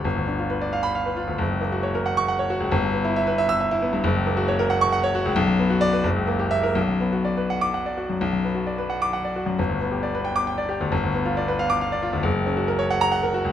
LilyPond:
\new Staff \with { instrumentName = "Grand piano" } { \time 6/8 \key b \minor \tempo 4. = 90 << { r4. r16 b''8 r8. | r4. r16 cis'''8 r8. | r4. r16 e'''8 r8. | r4. r16 cis'''8 r8. |
r4 d''8 r4 e''8 | r4. r16 d'''8 r8. | r4. r16 d'''8 r8. | r4. r16 d'''8 r8. |
r4. r16 d'''8 r8. | r4. r16 ais''8 r8. | } \\ { g,,16 d,16 d'16 f'16 b'16 d''16 f''8 f''16 b'16 f'16 d,16 | fis,,16 cis,16 ais16 fis'16 cis''16 ais'16 fis''8 fis''16 cis''16 fis'16 cis,16 | g,,16 g,16 b16 e'16 e''16 b'16 e''8 e''16 e'16 b16 g,16 | fis,,16 cis,16 ais16 fis'16 cis''16 ais'16 fis''8 fis''16 cis''16 fis'16 cis,16 |
b,,16 fis,16 b16 fis'8 b'16 fis,,16 cis,16 ais16 g'8 ais'16 | b,,16 fis,16 b16 fis'16 d''16 b'16 fis''8 fis''16 d''16 fis'16 fis,16 | b,,16 fis,16 b16 fis'16 d''16 b'16 fis''8 fis''16 d''16 fis'16 fis,16 | g,,16 d,16 b16 g'16 d''16 b'16 g''8 g''16 d''16 g'16 d,16 |
g,,16 d,16 b16 f'16 d''16 b'16 f''8 f''16 d''16 f'16 d,16 | fis,,16 cis,16 cis'16 fis'16 ais'16 cis''16 fis''8 fis''16 ais'16 fis'16 cis,16 | } >> }